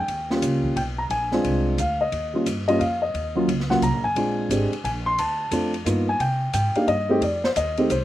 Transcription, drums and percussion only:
0.08 ride soft
0.30 snare soft
0.42 hi-hat pedal medium
0.42 ride medium
0.64 kick soft
0.77 ride medium
1.10 ride soft
1.32 snare soft
1.44 ride soft
1.78 hi-hat pedal medium
1.78 ride soft
2.12 ride soft
2.46 hi-hat pedal medium
2.46 ride medium
2.68 ride soft
2.81 ride soft
3.15 ride soft
3.49 ride medium
3.60 snare soft
3.71 snare soft
3.82 hi-hat pedal medium
3.82 ride medium
4.16 ride medium
4.51 hi-hat pedal medium
4.51 ride medium
4.73 ride soft
4.85 ride soft
5.18 ride medium
5.51 hi-hat pedal soft
5.51 ride medium
5.74 ride soft
5.86 hi-hat pedal medium
5.86 ride medium
6.20 ride soft
6.53 hi-hat pedal medium
6.53 ride medium
6.75 ride soft
6.88 ride soft
7.22 ride medium
7.44 snare soft
7.56 hi-hat pedal medium
7.56 ride medium
7.77 ride soft
7.90 hi-hat pedal soft
7.90 ride soft

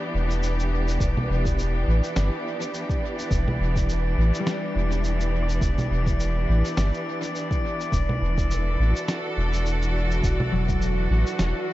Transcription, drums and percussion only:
0.30 shaker soft
0.43 shaker medium
0.59 shaker soft
0.88 shaker soft
1.00 kick loud
1.00 shaker medium
1.17 low conga medium
1.45 kick loud
1.45 shaker soft
1.59 shaker soft
2.04 shaker soft
2.16 snare medium
2.16 shaker medium
2.61 shaker soft
2.74 shaker soft
2.89 kick loud
2.89 shaker soft
3.19 shaker soft
3.31 kick loud
3.31 shaker medium
3.48 low conga medium
3.76 kick loud
3.76 shaker soft
3.89 shaker soft
4.34 shaker soft
4.47 snare loud
4.47 shaker medium
4.91 shaker soft
5.04 shaker soft
5.20 shaker soft
5.49 shaker soft
5.61 kick loud
5.61 shaker soft
5.78 low conga medium
5.78 shaker soft
6.07 kick loud
6.07 shaker soft
6.20 shaker soft
6.65 shaker soft
6.77 snare medium
6.77 shaker medium
6.94 shaker soft
7.23 shaker soft
7.35 shaker soft
7.51 kick loud
7.51 shaker soft
7.81 shaker soft
7.92 kick loud
7.92 shaker soft
8.09 low conga medium
8.38 kick loud
8.38 shaker soft
8.51 shaker soft
8.96 shaker soft
9.08 snare medium
9.08 shaker soft
9.53 shaker soft
9.66 shaker soft
9.82 shaker soft
10.11 shaker soft
10.23 kick loud
10.23 shaker medium
10.40 low conga medium
10.69 kick loud
10.69 shaker soft
10.82 shaker soft
11.27 shaker soft
11.39 snare medium
11.39 shaker soft

